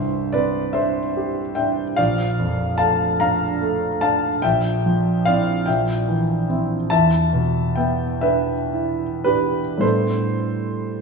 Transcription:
0.00 1.93 C2 soft
0.00 0.59 G2 soft
0.00 0.31 C5 soft
0.00 0.34 E5 medium
0.33 0.99 C4 soft
0.33 0.71 B4 soft
0.33 0.74 D5 medium
0.73 1.40 D4 soft
0.73 1.52 C5 soft
0.73 1.54 E5 medium
1.17 1.82 G4 soft
1.55 1.98 D4 soft
1.55 1.94 E5 soft
1.55 1.97 G5 medium
1.96 4.40 A#1 soft
1.96 2.75 D5 medium
1.96 2.77 F5 medium
2.39 3.04 F2 soft
2.78 3.45 A3 soft
2.78 3.17 F5 medium
2.78 3.19 A5 medium
3.20 3.86 D4 soft
3.20 3.98 F5 medium
3.20 4.02 A#5 medium
3.61 4.27 A3 soft
4.01 4.44 D4 soft
4.01 4.41 F5 medium
4.01 4.43 A5 medium
4.42 5.64 A#1 soft
4.42 5.23 E5 medium
4.42 5.26 G5 medium
4.86 5.51 F3 soft
5.25 5.64 C4 soft
5.25 5.64 E4 soft
5.25 5.65 D5 medium
5.25 5.67 F5 medium
5.66 6.87 A#1 soft
5.66 6.45 E5 soft
5.66 6.48 G5 medium
6.08 6.74 E3 soft
6.49 6.87 C4 soft
6.49 6.87 E4 soft
6.90 9.78 E2 soft
6.90 7.73 E5 medium
6.90 7.76 A5 medium
7.33 8.04 B2 soft
7.76 8.52 B3 soft
7.76 8.20 E5 soft
7.76 8.22 G5 medium
8.21 9.03 D4 soft
8.21 9.20 B4 medium
8.21 9.24 E5 medium
8.73 9.59 E4 soft
9.24 9.78 D4 soft
9.24 9.78 G4 soft
9.24 9.81 B4 medium
9.77 11.01 A2 soft
9.77 11.01 G3 soft
9.77 11.01 B3 soft
9.77 11.01 D4 soft
9.77 11.01 E4 soft
9.77 11.01 C5 medium
9.82 11.01 A4 soft

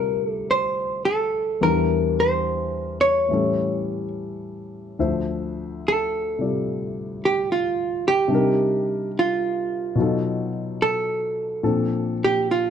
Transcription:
0.00 1.62 D2 soft
0.00 1.61 C3 soft
0.00 1.62 D3 soft
0.00 1.62 F3 soft
0.00 1.59 G3 soft
0.00 1.62 E4 soft
0.00 1.62 F4 soft
0.00 0.27 A#4 medium
0.00 1.62 C5 soft
0.00 1.62 D5 soft
0.27 0.50 A4 medium
0.51 1.02 C5 medium
1.05 1.63 A4 medium
1.61 3.29 E2 medium
1.61 3.28 E3 soft
1.61 3.28 G3 soft
1.61 3.29 D4 soft
1.61 3.29 A#4 medium
1.61 2.20 A#4 medium
2.20 3.01 C5 medium
3.01 4.08 C#5 medium
3.29 4.97 A2 soft
3.29 4.97 E3 soft
3.29 4.98 G3 soft
3.29 4.98 C#4 soft
3.33 4.99 A4 soft
4.99 8.31 D2 soft
4.99 8.31 D3 soft
4.99 8.31 F3 soft
4.99 8.31 C5 medium
4.99 8.31 E5 soft
5.88 7.21 A4 medium
6.39 8.26 C3 soft
6.39 8.28 G3 soft
6.39 8.31 F4 soft
6.39 8.31 D5 soft
7.25 7.48 G4 medium
7.52 8.05 F4 medium
8.08 9.11 G4 medium
8.28 9.95 C3 medium
8.28 9.96 G3 soft
8.28 9.96 D4 medium
8.33 9.97 D#4 soft
8.33 9.98 A#4 medium
9.19 10.52 F4 medium
9.95 11.61 B2 medium
9.95 11.63 F#3 soft
9.95 11.63 D#4 medium
10.00 11.64 F4 soft
10.00 11.63 A4 medium
10.82 12.17 A4 medium
11.63 12.70 A#2 medium
11.63 12.70 F3 soft
11.63 12.70 C4 soft
11.63 12.70 D4 soft
11.63 12.70 A4 medium
12.24 12.47 G4 medium
12.51 12.70 F4 medium

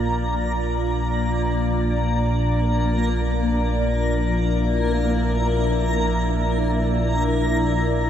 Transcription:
0.00 8.10 A#1 medium
0.00 8.10 A#2 medium
0.00 8.10 F3 medium
0.00 8.10 A#3 medium
0.00 8.10 D4 medium
0.00 4.17 F4 medium
0.00 8.10 D5 medium
0.00 8.10 A#5 medium
3.85 8.10 E4 medium

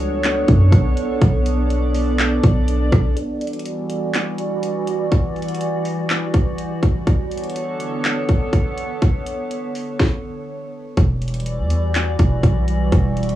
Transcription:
0.00 0.45 C#2 loud
0.00 3.13 B3 medium
0.00 3.13 D4 medium
0.00 3.13 A4 medium
0.00 1.20 C#5 medium
0.24 clap loud
0.24 closed hi-hat medium
0.48 0.72 F#2 loud
0.48 kick loud
0.48 closed hi-hat medium
0.73 0.96 B1 loud
0.73 kick loud
0.73 closed hi-hat medium
0.97 closed hi-hat medium
1.22 2.40 B1 loud
1.22 3.15 D5 medium
1.22 kick loud
1.22 closed hi-hat medium
1.46 closed hi-hat medium
1.70 closed hi-hat medium
1.95 open hi-hat medium
2.19 clap loud
2.19 closed hi-hat medium
2.43 2.90 B1 loud
2.43 kick loud
2.43 closed hi-hat medium
2.68 closed hi-hat medium
2.92 3.16 B1 loud
2.92 kick loud
2.92 cross-stick medium
2.92 closed hi-hat medium
3.17 7.03 E3 medium
3.17 7.03 G3 medium
3.17 7.03 F#4 medium
3.17 7.03 D5 medium
3.17 closed hi-hat medium
3.41 closed hi-hat soft
3.47 closed hi-hat soft
3.53 closed hi-hat medium
3.59 closed hi-hat medium
3.66 closed hi-hat medium
3.90 closed hi-hat medium
4.15 clap loud
4.15 closed hi-hat medium
4.38 closed hi-hat medium
4.63 closed hi-hat medium
4.87 closed hi-hat medium
5.12 kick loud
5.12 closed hi-hat medium
5.36 closed hi-hat soft
5.42 closed hi-hat soft
5.49 closed hi-hat medium
5.55 closed hi-hat medium
5.61 closed hi-hat medium
5.85 open hi-hat soft
6.10 clap loud
6.10 closed hi-hat medium
6.34 kick loud
6.34 closed hi-hat medium
6.58 closed hi-hat medium
6.83 kick medium
6.83 closed hi-hat medium
7.07 9.97 D3 medium
7.07 9.97 B3 medium
7.07 9.97 A4 medium
7.07 9.97 C#5 medium
7.07 kick loud
7.07 closed hi-hat medium
7.32 closed hi-hat soft
7.38 closed hi-hat medium
7.44 closed hi-hat medium
7.50 closed hi-hat medium
7.56 closed hi-hat medium
7.80 closed hi-hat medium
8.05 clap loud
8.05 closed hi-hat medium
8.29 kick loud
8.29 closed hi-hat medium
8.53 kick medium
8.53 closed hi-hat medium
8.78 closed hi-hat medium
9.02 kick loud
9.02 closed hi-hat medium
9.27 closed hi-hat medium
9.51 closed hi-hat medium
9.75 open hi-hat soft
10.00 kick loud
10.00 snare medium
10.97 11.60 E1 loud
10.97 13.35 E3 medium
10.97 13.35 G3 medium
10.97 13.35 F#4 medium
10.97 12.91 D5 medium
10.97 kick loud
10.97 closed hi-hat medium
11.22 closed hi-hat soft
11.28 closed hi-hat medium
11.34 closed hi-hat medium
11.40 closed hi-hat medium
11.46 closed hi-hat medium
11.58 12.16 E2 loud
11.70 closed hi-hat medium
11.95 clap loud
11.95 closed hi-hat medium
12.19 12.43 E1 loud
12.19 kick loud
12.19 closed hi-hat medium
12.43 12.90 B1 loud
12.43 kick medium
12.43 closed hi-hat medium
12.68 closed hi-hat medium
12.92 13.35 E1 loud
12.92 13.35 E5 medium
12.92 kick loud
12.92 closed hi-hat medium
13.17 closed hi-hat soft
13.23 closed hi-hat medium
13.29 closed hi-hat medium

